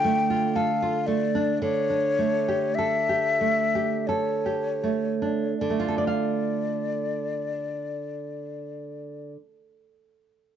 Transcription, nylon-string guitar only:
Already playing: D3 F4
0.05 A3
0.30 F4
0.56 A4
0.82 F4
1.08 A3
1.35 D4
1.62 D3
1.90 D4
2.19 A3
2.48 G4
2.78 A4
3.09 G4
3.41 A3
3.75 G4
4.09 A4
4.46 G4
4.84 A3
5.22 D4
5.61 D3
5.70 A3
5.80 F4
5.88 A4
5.98 D5
6.07 F5

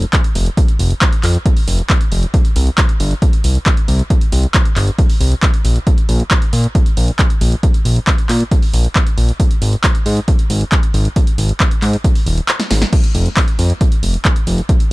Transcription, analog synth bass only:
0.35 F1
0.79 F1
1.24 F2
1.68 F1
2.12 F1
2.56 C2
3.00 G1
3.44 C2
3.88 C2
4.32 C2
4.76 G1
5.21 C2
5.65 A#1
6.09 A#1
6.53 A#2
6.97 A#1
7.41 A#1
7.85 A#1
8.29 A#2
8.73 A#1
9.18 A#1
9.62 G#1
10.06 G#2
10.50 G#1
10.94 G#1
11.38 G#1
11.82 G#2
12.26 D#1
12.71 G#1
13.15 F1
13.59 F2
14.03 F1
14.47 F1

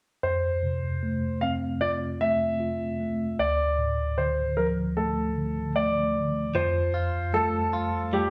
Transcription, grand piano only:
0.23 C5
1.41 F5
1.81 D5
2.21 E5
3.39 D5
4.18 C5
4.57 A#4
4.97 A4
5.76 D5
6.55 C5
7.34 A4
8.13 G4

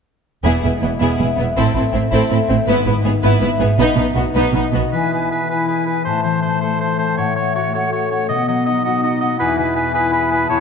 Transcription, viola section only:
0.44 B3
0.64 B3
0.83 B3
1.01 B3
1.21 B3
1.39 B3
1.57 C4
1.76 C4
1.94 C4
2.12 C4
2.30 C4
2.49 C4
2.68 B3
2.86 B3
3.05 B3
3.23 B3
3.40 B3
3.60 B3
3.78 B3
3.97 B3
4.16 B3
4.36 B3
4.55 B3
4.74 B3

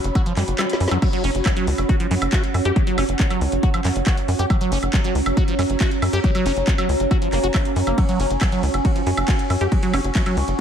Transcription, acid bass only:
0.15 F#4
0.26 F3
0.37 G3
0.59 G3
0.91 F#3
1.02 F#3
1.13 F#3
1.24 C#4
1.46 F#3
1.57 F#3
1.89 F#4
2.00 F3
2.11 F#3
2.33 F#4
2.65 G4
2.76 F#3
2.87 F#3
2.98 C#4
3.20 F#3
3.30 F#3
3.63 F#4
3.74 F3
3.85 F#3
4.07 F#4
4.39 G4
4.50 F#3
4.61 F#3
4.72 C#4
4.94 F#3
5.04 F#3
5.37 F#4
5.48 F3
5.59 F#3
5.81 F#4
6.13 G4
6.24 F#3
6.35 F#3
6.46 C#4
6.67 F#3
6.78 F#3
7.11 F#4
7.22 F3
7.33 A#3
7.44 F#4
7.54 F#3
7.87 A#3
7.98 F#3
8.09 F#3
8.20 C#4
8.41 F#3
8.52 F#3
8.85 F#4
8.96 F3
9.07 F#3
9.28 F#4
9.61 G4
9.72 F#3
9.83 F#3
9.94 C#4
10.15 F#3
10.26 F#3

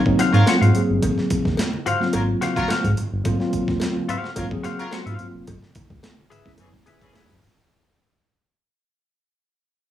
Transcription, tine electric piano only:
0.06 F#3 A#3 C4 D#4
0.46 F#3 A#3 C4 F4
0.74 F#3 A#3 C4 G#4
2.00 F#3 A#3 C4 F4
3.24 F#3 A#3 C4 F4
3.39 F#3 A#3 C4 F4
4.36 F#3 A#3 C4 F4
4.51 F#3 A#3 C4 G#4
4.92 F#3 A#3 C4 F#4
5.20 F#3 A#3 C4 F4
6.45 G#3 B3 C#4 E4

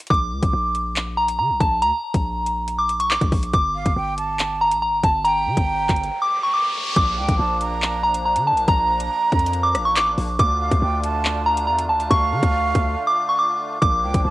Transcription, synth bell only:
0.10 D6
1.17 A#5
1.39 A#5
1.60 A5
1.82 A#5
2.79 D6
3.00 C#6
3.10 D6
3.54 D6
4.61 A#5
4.82 A#5
5.04 A5
5.24 A#5
6.22 D6
6.43 C#6
6.54 D6
6.97 D6
8.03 A#5
8.25 A#5
8.47 A5
8.68 A#5
9.63 D6
9.85 C#6
9.96 D6
10.40 D6
11.46 A#5
11.67 A#5
11.89 A5
12.11 C#6
13.07 D6
13.29 C#6
13.39 D6
13.82 D6

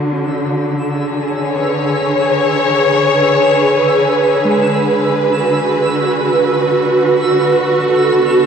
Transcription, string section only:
Already playing: D3 F#4
0.88 G#4
1.45 B4 C#5
5.28 F#4
7.86 A4
8.20 B3

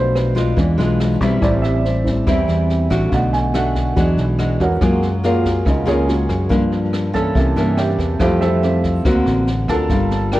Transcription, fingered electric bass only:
Already playing: B1
0.57 E2
0.78 B1
1.21 B1
1.42 A1
2.27 E2
2.48 E2
2.90 A1
3.12 B1
3.97 E2
4.17 B1
4.60 E2
4.81 F#2
5.66 C#2
5.87 C#2
6.29 F#2
6.50 G2
7.35 C2
7.56 G2
7.99 E2
8.20 F2
9.05 D2
9.26 A1
9.68 D2
9.90 G1

